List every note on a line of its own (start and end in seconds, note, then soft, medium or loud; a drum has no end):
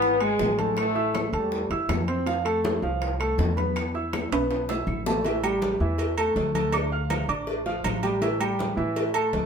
0.00 0.35 G#1 medium
0.00 0.14 E3 medium
0.00 0.19 B3 loud
0.00 0.14 E4 medium
0.00 0.15 E5 medium
0.00 high bongo medium
0.00 high conga soft
0.00 high timbale medium
0.20 0.52 G#3 medium
0.20 0.56 G#3 loud
0.20 0.52 G#4 medium
0.20 0.52 G#5 medium
0.20 high bongo soft
0.20 high conga soft
0.20 high timbale medium
0.20 claves medium
0.39 1.27 A1 medium
0.39 high bongo medium
0.39 low bongo medium
0.39 high conga medium
0.39 low timbale medium
0.58 0.76 G#3 medium
0.58 0.89 A3 medium
0.58 0.89 A4 medium
0.58 0.89 A5 medium
0.58 high bongo soft
0.58 high conga medium
0.58 high timbale medium
0.77 1.29 A3 loud
0.77 high bongo medium
0.77 high timbale medium
0.77 claves medium
0.95 1.26 E4 medium
0.95 1.26 E5 medium
0.95 1.26 E6 medium
0.95 high bongo soft
0.95 high conga soft
1.14 high bongo medium
1.14 high conga loud
1.14 high timbale medium
1.14 low timbale medium
1.14 claves medium
1.33 1.68 E2 medium
1.33 1.71 G3 medium
1.33 1.64 A3 medium
1.33 1.64 A4 medium
1.33 1.64 A5 medium
1.33 high conga soft
1.33 high timbale medium
1.52 high bongo medium
1.52 high conga soft
1.70 1.88 E2 medium
1.70 2.01 E4 medium
1.70 2.01 E5 medium
1.70 2.02 E6 medium
1.70 high bongo soft
1.70 high conga soft
1.70 high timbale medium
1.89 2.76 F2 medium
1.89 high bongo medium
1.89 low bongo medium
1.89 high conga medium
1.89 high timbale loud
1.89 low timbale medium
1.89 claves medium
2.08 2.23 C4 medium
2.08 2.23 C5 medium
2.08 2.24 C6 medium
2.08 high bongo soft
2.08 high conga soft
2.08 high timbale medium
2.26 2.41 F3 medium
2.26 2.42 F4 medium
2.26 2.42 F5 medium
2.26 high bongo medium
2.26 high conga soft
2.26 high timbale medium
2.45 2.75 A3 medium
2.45 2.76 A4 medium
2.45 2.76 A5 medium
2.45 high conga soft
2.45 high timbale medium
2.45 claves medium
2.64 high bongo medium
2.64 high conga loud
2.64 low timbale medium
2.82 3.34 C2 medium
2.82 3.13 F3 medium
2.82 3.13 F4 medium
2.82 3.13 F5 medium
2.82 high bongo soft
2.82 high conga soft
3.02 high bongo medium
3.02 high conga soft
3.02 high timbale medium
3.20 3.50 A3 medium
3.20 3.51 A4 medium
3.20 3.51 A5 medium
3.20 high bongo soft
3.20 high conga soft
3.20 high timbale medium
3.20 claves medium
3.38 4.25 E2 medium
3.38 high bongo medium
3.38 low bongo medium
3.38 high conga medium
3.38 low timbale medium
3.57 3.87 B3 medium
3.57 3.87 B4 medium
3.57 3.87 B5 medium
3.57 high bongo soft
3.57 high conga medium
3.57 high timbale medium
3.76 high bongo medium
3.76 high conga soft
3.76 high timbale medium
3.76 claves medium
3.94 4.25 E4 medium
3.94 4.25 E5 medium
3.94 4.25 E6 medium
3.94 high bongo soft
3.94 high conga soft
4.13 high bongo medium
4.13 high conga medium
4.13 high timbale medium
4.13 low timbale medium
4.13 claves medium
4.32 4.83 B1 medium
4.32 4.62 B3 medium
4.32 4.62 B4 medium
4.32 4.63 B5 medium
4.32 high conga soft
4.32 high timbale loud
4.50 high bongo medium
4.50 high conga soft
4.50 high timbale medium
4.69 4.99 E4 medium
4.69 4.99 E5 medium
4.69 5.00 E6 medium
4.69 high bongo medium
4.69 high conga soft
4.69 low timbale loud
4.87 5.74 A1 loud
4.87 high conga medium
4.87 claves medium
5.06 5.21 A3 medium
5.06 5.22 A4 medium
5.06 5.21 A5 medium
5.06 low bongo loud
5.06 high conga soft
5.06 low timbale medium
5.25 5.40 E3 medium
5.25 5.40 E4 medium
5.25 5.40 E5 medium
5.25 cowbell loud
5.25 high conga soft
5.25 low agogo medium
5.43 5.74 G3 medium
5.43 5.74 G4 medium
5.43 5.74 G5 medium
5.43 high conga soft
5.43 low agogo loud
5.43 claves medium
5.62 cowbell medium
5.62 high conga loud
5.62 low timbale medium
5.80 6.32 E2 medium
5.80 6.11 E3 medium
5.80 6.11 E4 medium
5.80 6.11 E5 medium
5.80 high conga soft
5.98 cowbell loud
5.98 high conga soft
5.98 low agogo medium
6.18 6.48 A3 medium
6.18 6.48 A4 medium
6.18 6.48 A5 medium
6.18 high conga soft
6.18 low agogo loud
6.18 claves medium
6.36 7.23 D2 medium
6.36 cowbell medium
6.36 high conga medium
6.36 low timbale medium
6.54 6.70 A3 medium
6.54 6.70 A4 medium
6.54 6.70 A5 medium
6.54 cowbell medium
6.54 high conga medium
6.54 low agogo medium
6.72 6.88 D4 medium
6.72 6.88 D5 medium
6.72 6.89 D6 medium
6.72 cowbell loud
6.72 high conga soft
6.72 low agogo loud
6.72 claves medium
6.91 7.22 F4 medium
6.91 7.22 F5 medium
6.91 7.23 F6 medium
6.91 high conga soft
7.10 cowbell medium
7.10 high conga loud
7.10 low timbale medium
7.10 low agogo medium
7.10 claves medium
7.28 7.80 A1 medium
7.28 7.59 D4 medium
7.28 7.59 D5 medium
7.28 7.59 D6 medium
7.28 high conga soft
7.28 low agogo medium
7.47 cowbell loud
7.47 high conga soft
7.66 7.96 F3 medium
7.66 7.97 F4 loud
7.66 7.97 F5 medium
7.66 cowbell medium
7.66 high conga soft
7.84 8.71 A1 medium
7.84 cowbell medium
7.84 high conga medium
7.84 low timbale medium
7.84 low agogo loud
7.84 claves medium
8.03 8.18 G3 medium
8.03 8.18 G4 medium
8.03 8.19 G5 medium
8.03 cowbell medium
8.03 high conga soft
8.03 low agogo loud
8.21 8.37 E3 medium
8.21 8.37 E4 medium
8.21 8.37 E5 medium
8.21 cowbell loud
8.21 high conga soft
8.21 low agogo medium
8.40 8.71 G3 medium
8.40 8.71 G4 medium
8.40 8.71 G5 medium
8.40 high conga soft
8.40 low agogo loud
8.40 claves medium
8.59 cowbell medium
8.59 high conga loud
8.59 low timbale medium
8.76 9.29 A2 medium
8.76 9.07 E3 medium
8.76 9.08 E4 medium
8.76 9.08 E5 medium
8.76 high conga soft
8.96 cowbell loud
8.96 high conga soft
8.96 low agogo medium
9.14 9.45 A3 medium
9.14 9.45 A4 medium
9.14 9.45 A5 medium
9.14 high conga soft
9.14 low agogo loud
9.14 claves medium
9.33 9.46 D2 loud
9.33 cowbell medium
9.33 high conga medium
9.33 low timbale medium